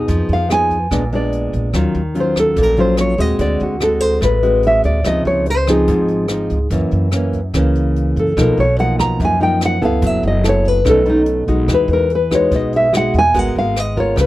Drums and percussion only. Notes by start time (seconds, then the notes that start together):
0.08 kick, closed hi-hat
0.29 closed hi-hat
0.50 cross-stick, closed hi-hat
0.70 kick, closed hi-hat
0.91 kick, cross-stick, closed hi-hat
1.12 closed hi-hat
1.32 closed hi-hat
1.53 kick, closed hi-hat
1.73 kick, cross-stick, closed hi-hat
1.94 closed hi-hat
2.15 closed hi-hat
2.36 kick, cross-stick, closed hi-hat
2.56 kick, closed hi-hat
2.77 closed hi-hat
2.97 cross-stick, closed hi-hat
3.18 kick, closed hi-hat
3.39 kick, closed hi-hat
3.60 closed hi-hat
3.80 cross-stick, closed hi-hat
4.01 kick, closed hi-hat
4.22 kick, cross-stick, closed hi-hat
4.43 closed hi-hat
4.63 closed hi-hat
4.83 kick, closed hi-hat
5.04 kick, cross-stick, closed hi-hat
5.26 closed hi-hat
5.46 closed hi-hat
5.67 kick, cross-stick, closed hi-hat
5.88 kick, closed hi-hat
6.08 closed hi-hat
6.28 cross-stick, closed hi-hat
6.50 kick, closed hi-hat
6.70 kick, closed hi-hat
6.91 closed hi-hat
7.11 cross-stick, closed hi-hat
7.33 kick, closed hi-hat
7.54 kick, cross-stick, closed hi-hat
7.75 closed hi-hat
7.96 closed hi-hat
8.16 kick, closed hi-hat
8.37 kick, cross-stick, closed hi-hat
8.57 closed hi-hat
8.78 closed hi-hat
8.99 kick, cross-stick, closed hi-hat
9.20 kick, closed hi-hat
9.41 closed hi-hat
9.61 cross-stick, closed hi-hat
9.82 kick, closed hi-hat
10.02 kick, closed hi-hat
10.23 closed hi-hat
10.44 cross-stick, closed hi-hat
10.64 kick, closed hi-hat
10.85 kick, cross-stick, closed hi-hat
11.05 closed hi-hat
11.26 closed hi-hat
11.47 kick, closed hi-hat
11.68 kick, cross-stick, closed hi-hat
11.89 closed hi-hat
12.10 closed hi-hat
12.31 kick, cross-stick, closed hi-hat
12.51 kick, closed hi-hat
12.73 closed hi-hat
12.93 cross-stick, closed hi-hat
13.14 kick, closed hi-hat
13.34 kick, closed hi-hat
13.56 closed hi-hat
13.76 cross-stick, closed hi-hat
13.97 kick, closed hi-hat
14.17 kick, cross-stick, closed hi-hat